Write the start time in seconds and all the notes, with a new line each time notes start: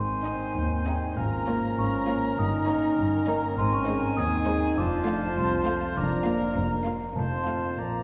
Already playing: G#1 G#2 D#3 C4 D#4 C5 G#5 C6
0.24 C4 D#4 D#5
0.56 D#2 D#4
0.86 G3 C4 D#4 G#4 D#5 G5
1.16 G#1 G#2 F3 G#3 C#4 A#4 G#5 A#5
1.32 A#3 A#5
1.47 A#3 F4 C#5
1.77 G#1 G#2 C#4 F4 C#6
2.08 A#3 F4 A#4 C#5
2.38 G1 G2 D#3 D#4 D#6
2.67 A#3 C#4 D#4 C#5
2.98 G1 G2 D#4
3.27 A#3 D#4 A#4 C#5 A#5
3.57 G#1 G#2 C4 G#5 C6
3.72 C#4 C#6
3.87 G#3 C4 D#4 C5
4.17 D#2 D#4 G#4 D#6
4.46 G#3 D#4 G#4 C5
4.76 F1 F2 F3 D4 F4 C5 A5 D6
5.06 A3 C4 F4 F5
5.36 C2 C4 F4 C6
5.65 A3 F4 A4 F5
5.96 F1 F2 D4 A#4 A#5 D6
6.25 A#3 F4 F5
6.55 F1 F2 A#3 F4 A#5
6.86 A#3 F4 A#4 F5
7.16 F1 F2 F3 A3 F4 C5 A5
7.30 C4 C6
7.47 A3 F4 A4 F5
7.77 A#1 A#2 A#3 D5 A#5